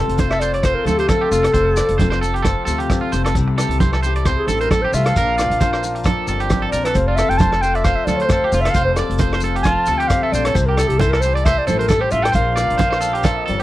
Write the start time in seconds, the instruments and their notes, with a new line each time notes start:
Already playing: nylon-string guitar F2 C4 A4, accordion C4 F4 A4, clean electric guitar A4
0.08 upright bass F1, closed hi-hat
0.17 nylon-string guitar F3, clean electric guitar C5, kick, closed hi-hat, high conga, shekere
0.30 clean electric guitar A4, clarinet E5, cross-stick
0.40 nylon-string guitar A4, clean electric guitar C5, clarinet D5, closed hi-hat, muted conga, shekere
0.54 clarinet C#5, clean electric guitar D5, closed hi-hat
0.63 nylon-string guitar C4, clarinet C5, clean electric guitar C5, kick, cross-stick, closed hi-hat, muted conga, shekere
0.75 clarinet A#4
0.84 upright bass D2, nylon-string guitar C3 A3, clarinet A4, clean electric guitar A4, closed hi-hat, muted conga, high conga, shekere
0.98 clarinet G4, clean electric guitar C5, closed hi-hat
1.09 nylon-string guitar C4, clean electric guitar A4, clarinet A4, kick, cross-stick, closed hi-hat, high conga, shekere
1.21 clean electric guitar G4
1.31 upright bass F1, nylon-string guitar A3, clean electric guitar F4, closed hi-hat, shekere
1.43 clean electric guitar A4, cross-stick, closed hi-hat
1.53 upright bass F1, nylon-string guitar F2 C4, clean electric guitar C5, kick, closed hi-hat, shekere
1.57 muted conga
1.76 nylon-string guitar C4, clean electric guitar D5, cross-stick, closed hi-hat, shekere
1.88 upright bass F1, closed hi-hat
1.98 nylon-string guitar F3 C4, clean electric guitar C5, kick, closed hi-hat, high conga, shekere
2.10 clean electric guitar C5, cross-stick
2.21 nylon-string guitar C4, clean electric guitar A4, closed hi-hat, muted conga, shekere
2.34 clean electric guitar G4, closed hi-hat
2.43 nylon-string guitar C4, clean electric guitar A4, kick, cross-stick, closed hi-hat, muted conga, high conga, shekere
2.65 upright bass D2, nylon-string guitar C3 A3, clean electric guitar A4, closed hi-hat, muted conga, shekere
2.78 clean electric guitar G4, closed hi-hat
2.90 nylon-string guitar C4, kick, cross-stick, closed hi-hat, high conga, shekere
3.01 clean electric guitar F4
3.12 upright bass F1, nylon-string guitar A3, clean electric guitar C5, closed hi-hat, shekere
3.25 clean electric guitar A4, cross-stick, closed hi-hat
3.35 upright bass C2, nylon-string guitar C3 C4, accordion E4, kick, closed hi-hat, shekere
3.48 muted clean electric guitar stroke
3.58 nylon-string guitar G4, clean electric guitar A4, cross-stick, closed hi-hat, shekere
3.69 upright bass C2, closed hi-hat
3.80 nylon-string guitar E3 C4, clean electric guitar C5, kick, closed hi-hat, high conga, shekere
3.93 clean electric guitar A4, cross-stick
4.03 nylon-string guitar G4, clean electric guitar C5, closed hi-hat, muted conga, shekere
4.15 clean electric guitar D5, closed hi-hat
4.25 nylon-string guitar C4, clean electric guitar C5, kick, cross-stick, closed hi-hat, muted conga, shekere
4.38 clarinet G#4
4.47 upright bass A1, nylon-string guitar G2 A3, clean electric guitar A4, clarinet A4, closed hi-hat, muted conga, high conga, shekere
4.61 clarinet A#4, clean electric guitar C5, closed hi-hat
4.71 nylon-string guitar C4, clarinet A4, clean electric guitar A4, kick, cross-stick, closed hi-hat, high conga, shekere
4.82 clean electric guitar G4, clarinet C5
4.92 upright bass C2, nylon-string guitar A3, clean electric guitar F4, clarinet E5, closed hi-hat, shekere
5.05 clean electric guitar A4, clarinet F5, cross-stick, closed hi-hat
5.16 upright bass A#1, nylon-string guitar A#2 D4, accordion D4 A#4, clean electric guitar A#4, kick, closed hi-hat, muted conga, shekere
5.38 nylon-string guitar F4, clean electric guitar D5, cross-stick, closed hi-hat, shekere
5.50 upright bass A#1, closed hi-hat
5.61 nylon-string guitar F3 D4, clean electric guitar C5, kick, closed hi-hat, high conga, shekere
5.73 clean electric guitar C5, cross-stick
5.83 nylon-string guitar F4, closed hi-hat, muted conga, shekere
5.95 muted clean electric guitar stroke, closed hi-hat
6.04 clean electric guitar A4, kick, cross-stick, closed hi-hat, muted conga, high conga, shekere
6.09 nylon-string guitar D4
6.27 upright bass G1, nylon-string guitar F2 C4, clean electric guitar A4, closed hi-hat, muted conga, shekere
6.40 clean electric guitar G4, closed hi-hat
6.50 nylon-string guitar D4, kick, cross-stick, closed hi-hat, high conga, shekere
6.62 clean electric guitar A4
6.71 upright bass A#1, clean electric guitar A#4, clarinet D5, closed hi-hat, shekere
6.75 nylon-string guitar C4
6.84 clean electric guitar A4, clarinet B4, cross-stick, closed hi-hat
6.95 upright bass F1, nylon-string guitar F2 C4, accordion F4 A4, clarinet C5, kick, closed hi-hat, muted conga, shekere
7.08 clean electric guitar F4, clarinet D5
7.16 clean electric guitar A4, nylon-string guitar A4, clarinet E5, cross-stick, closed hi-hat, shekere
7.29 upright bass F1, clarinet G5, closed hi-hat
7.38 nylon-string guitar F3 C4, clean electric guitar C5, clarinet A5, kick, closed hi-hat, high conga, shekere
7.52 clean electric guitar A4, cross-stick
7.62 nylon-string guitar A4, clean electric guitar C5, clarinet G5, closed hi-hat, muted conga, shekere
7.75 clean electric guitar D5, clarinet E5, closed hi-hat
7.84 nylon-string guitar C4, clean electric guitar C5, clarinet F5, kick, cross-stick, closed hi-hat, muted conga, shekere
7.96 clarinet E5
8.05 upright bass D2, nylon-string guitar C3 A3, clean electric guitar A4, clarinet D5, closed hi-hat, muted conga, high conga, shekere
8.17 clarinet C#5, closed hi-hat
8.22 clean electric guitar C5
8.26 clarinet C5, kick, cross-stick, closed hi-hat, high conga, shekere
8.31 nylon-string guitar C4, clean electric guitar A4
8.44 clean electric guitar G4
8.52 upright bass F1, nylon-string guitar A3, clean electric guitar F4, closed hi-hat, shekere
8.61 clarinet E5
8.65 clean electric guitar A4, cross-stick, closed hi-hat
8.70 clarinet F5
8.74 upright bass F1, nylon-string guitar F2 C4, clean electric guitar C5, kick, closed hi-hat, muted conga, shekere
8.85 clarinet C5
8.96 nylon-string guitar A4, clean electric guitar D5, cross-stick, closed hi-hat, shekere
9.09 upright bass F1, closed hi-hat
9.18 nylon-string guitar F3 C4, clean electric guitar C5, kick, closed hi-hat, high conga, shekere
9.33 clean electric guitar C5, cross-stick
9.40 clean electric guitar A4, muted nylon-string guitar stroke, closed hi-hat, muted conga, shekere
9.56 clean electric guitar G4, closed hi-hat
9.63 clean electric guitar F4, clarinet A5, kick, cross-stick, closed hi-hat, muted conga, high conga, shekere
9.67 nylon-string guitar C4
9.86 upright bass D2, nylon-string guitar C3 A3, clean electric guitar A4, closed hi-hat, muted conga, shekere
9.98 clean electric guitar G4, clarinet G5, closed hi-hat
10.08 clarinet F5, kick, cross-stick, closed hi-hat, high conga, shekere
10.12 nylon-string guitar C4
10.22 clean electric guitar A4, clarinet E5
10.32 upright bass A#1, nylon-string guitar A3, clean electric guitar C5, clarinet D5, closed hi-hat, shekere
10.45 clean electric guitar A4, clarinet C#5, cross-stick, closed hi-hat
10.54 upright bass C2, nylon-string guitar C3 E4, accordion C4 E4, clarinet C5, kick, closed hi-hat, muted conga, shekere
10.66 clean electric guitar G4, clarinet A#4
10.77 nylon-string guitar G4, clarinet A4, clean electric guitar A4, cross-stick, closed hi-hat, shekere
10.88 upright bass C2, clarinet G4, closed hi-hat
10.98 nylon-string guitar E3 E4, clarinet A4, clean electric guitar C5, kick, closed hi-hat, high conga, shekere
11.09 clarinet A#4
11.13 clean electric guitar A4, cross-stick
11.21 clarinet C5, clean electric guitar C5, closed hi-hat, muted conga, shekere
11.26 nylon-string guitar G4
11.34 clarinet D5, clean electric guitar D5, closed hi-hat
11.45 nylon-string guitar E4, clean electric guitar C5, clarinet E5, kick, cross-stick, closed hi-hat, muted conga, shekere
11.58 clarinet D5
11.67 upright bass A1, nylon-string guitar G2 A3, clean electric guitar A4, clarinet C5, closed hi-hat, muted conga, high conga, shekere
11.79 clarinet A#4, clean electric guitar C5, closed hi-hat
11.89 nylon-string guitar E4, clean electric guitar A4, clarinet A4, kick, cross-stick, closed hi-hat, high conga, shekere
12.01 clean electric guitar G4, clarinet C5
12.11 upright bass A1, nylon-string guitar A3, clean electric guitar F4, clarinet E5, closed hi-hat, shekere
12.22 clean electric guitar A4, clarinet G5, cross-stick, closed hi-hat
12.32 upright bass A#1, clean electric guitar C5, clarinet F5, kick, closed hi-hat, shekere
12.36 nylon-string guitar A#2 D4, accordion D4 A#4, muted conga
12.56 clean electric guitar D5, cross-stick, closed hi-hat, shekere
12.61 nylon-string guitar F4
12.70 upright bass A#1, closed hi-hat
12.78 nylon-string guitar F3 D4, clean electric guitar C5, kick, closed hi-hat, high conga, shekere
12.90 clean electric guitar C5, cross-stick
13.01 clean electric guitar A4, closed hi-hat, muted conga, shekere
13.05 nylon-string guitar F4
13.13 clean electric guitar G4, closed hi-hat
13.23 nylon-string guitar D4, clean electric guitar A4, kick, cross-stick, closed hi-hat, muted conga, high conga, shekere
13.46 upright bass G1, nylon-string guitar F2 C4, clean electric guitar A4, closed hi-hat, muted conga
13.60 clean electric guitar G4, closed hi-hat